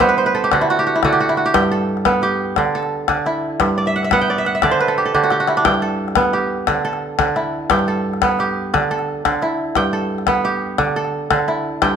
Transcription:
Already playing: kora G2 E4 D5 E5 F#5
0.00 kora B3 C5, calabash thump, calabash click
0.09 kora B4
0.17 kora C5, calabash click
0.26 kora B4
0.35 kora A4
0.44 kora G4
0.52 kora D3 F#4, calabash thump, calabash click
0.61 kora E4
0.70 kora F#4
0.77 kora G4, calabash click
0.87 kora F#4
0.96 kora E4
1.03 kora D3 F#4, calabash thump, calabash click
1.13 kora G4
1.20 kora F#4, calabash click
1.29 kora E4
1.37 kora F#4
1.46 kora G4
1.54 kora G2 G5, calabash thump, calabash click
1.63 calabash click
1.71 kora A4
1.97 calabash click
2.05 kora B3, calabash thump, calabash click
2.22 kora G4, calabash click
2.56 kora D3, calabash thump, calabash click
2.75 kora A4
2.83 calabash click
3.08 kora D3, calabash thump, calabash click
3.26 kora E4, calabash click
3.60 kora G2, calabash thump, calabash click
3.78 kora D5
3.86 kora E5, calabash click
3.96 kora F#5
4.03 kora E5, calabash click
4.11 kora B3 F#5, calabash thump, calabash click
4.20 kora G5, calabash click
4.28 kora D5, calabash click
4.38 kora E5
4.45 kora F#5, calabash click
4.55 kora E5
4.62 kora D3 D5, calabash thump, calabash click
4.71 kora C5
4.79 kora B4, calabash click
4.88 kora A4
4.98 kora G4
5.05 kora A4
5.14 kora D3 G4, calabash thump
5.24 kora F#4
5.30 kora G4, calabash click
5.40 kora F#4
5.48 kora E4, calabash click
5.57 kora D4
5.65 kora G2 G5, calabash thump, calabash click
5.74 calabash click
5.82 kora A4
6.08 calabash click
6.15 kora B3, calabash thump, calabash click
6.33 kora G4, calabash click
6.67 kora D3, calabash thump, calabash click
6.85 kora A4
6.93 calabash click
7.19 kora D3, calabash thump, calabash click
7.36 kora E4, calabash click
7.70 kora G2 G5, calabash thump, calabash click
7.79 calabash click
7.88 kora A4
8.14 calabash click
8.22 kora B3, calabash thump, calabash click
8.39 kora G4, calabash click
8.74 kora D3, calabash thump, calabash click
8.91 kora A4
8.99 calabash click
9.25 kora D3, calabash thump, calabash click
9.42 kora E4, calabash click
9.75 kora G2 G5, calabash thump, calabash click
9.85 calabash click
9.93 kora A4
10.18 calabash click
10.27 kora B3, calabash thump, calabash click
10.44 kora G4, calabash click
10.78 kora D3, calabash thump, calabash click
10.96 kora A4
11.05 calabash click
11.31 kora D3, calabash thump, calabash click
11.48 kora E4, calabash click
11.82 kora G2 G5, calabash thump, calabash click

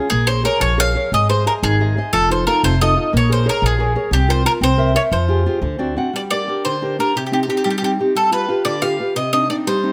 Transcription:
0.10 upright bass A#1, nylon-string guitar A#3, mandolin G#4
0.27 nylon-string guitar G#4 A#4 C#5, mandolin C5
0.43 nylon-string guitar G#4 A#4 C#5, mandolin A#4
0.60 upright bass A#1, nylon-string guitar F3, mandolin C#5
0.78 nylon-string guitar G#4 A#4 C#5, mandolin F5
0.95 nylon-string guitar G#4 A#4 C#5
1.12 upright bass G#1, nylon-string guitar G#3, mandolin D#5
1.29 nylon-string guitar G#4 C5 D#5, mandolin C5
1.46 nylon-string guitar G#4 C5 D#5, mandolin A#4
1.63 upright bass G#1, nylon-string guitar D#3, mandolin G#4
1.80 nylon-string guitar G#4 C5 D#5
1.97 nylon-string guitar G#4 C5 D#5
2.13 upright bass F1, nylon-string guitar F3, mandolin A4
2.30 nylon-string guitar D#4 F4 A4, mandolin C5
2.47 nylon-string guitar D#4 F4 A4, mandolin A#4
2.63 upright bass F1, nylon-string guitar C3, mandolin C5
2.81 nylon-string guitar D#4 F4 A4, mandolin D#5
2.96 nylon-string guitar D#4 F4 A4
3.13 upright bass A#1, nylon-string guitar A#3, mandolin C#5
3.29 nylon-string guitar G#4 A#4 C#5, mandolin C5
3.46 nylon-string guitar G#4 A#4 C#5, mandolin A#4
3.62 upright bass A#1, nylon-string guitar F3, mandolin G#4
3.79 nylon-string guitar G#4 A#4 C#5
3.95 nylon-string guitar G#4 A#4 C#5
4.11 upright bass C2, nylon-string guitar C4, mandolin G4
4.28 nylon-string guitar F4 A#4 C5, mandolin C5
4.45 nylon-string guitar F4 A#4 C5, mandolin A#4
4.61 upright bass C2, nylon-string guitar C4, mandolin C5
4.78 nylon-string guitar A#4 C5 E5
4.94 nylon-string guitar A#4 C5 E5, mandolin C#5
5.12 upright bass F2, nylon-string guitar F3, mandolin C5
5.28 nylon-string guitar F4 G4 G#4
5.46 nylon-string guitar F4 G4 G#4
5.62 upright bass D2, nylon-string guitar D3
5.79 nylon-string guitar C4 D4 F#4 D5
5.96 nylon-string guitar C4 D4 F#4 F#5
6.13 nylon-string guitar G3, mandolin D5
6.31 nylon-string guitar D4 G4 A#4, mandolin D5
6.48 nylon-string guitar D4 G4 A#4
6.65 nylon-string guitar D3, mandolin C5
6.82 nylon-string guitar D4 G4 A#4
6.99 nylon-string guitar D4 G4 A#4, mandolin A#4
7.16 nylon-string guitar C3, mandolin G4
7.26 mandolin G4
7.32 nylon-string guitar C4 D#4 G4, mandolin G4
7.43 mandolin G4
7.48 nylon-string guitar C4 D#4 G4, mandolin G4
7.57 mandolin G4
7.64 nylon-string guitar G3, mandolin G4
7.70 mandolin G4
7.78 nylon-string guitar C4, mandolin G4
7.82 nylon-string guitar D#4 G4, mandolin G4
8.00 nylon-string guitar C4 D#4 G4
8.15 nylon-string guitar G3, mandolin A4
8.31 nylon-string guitar F4 G4 B4, mandolin B4
8.48 nylon-string guitar F4 G4 B4
8.65 nylon-string guitar D3, mandolin D5
8.82 nylon-string guitar F4 G4 B4, mandolin F5
9.00 nylon-string guitar F4 G4 B4
9.16 nylon-string guitar C3, mandolin D#5
9.33 nylon-string guitar C4 D4 D#4, mandolin D#5
9.49 nylon-string guitar C4 D4 D#4, mandolin D5
9.67 nylon-string guitar G3, mandolin C5
9.83 nylon-string guitar C4 D4 D#4

